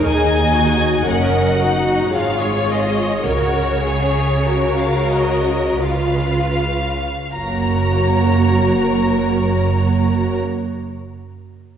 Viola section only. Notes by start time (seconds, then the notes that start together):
0.04 G#4
0.55 F#4
1.06 A#4
1.60 F#4
2.12 G#4
3.24 A#4
3.84 G#4
4.45 F#4
5.81 F4
7.35 A#3 F#4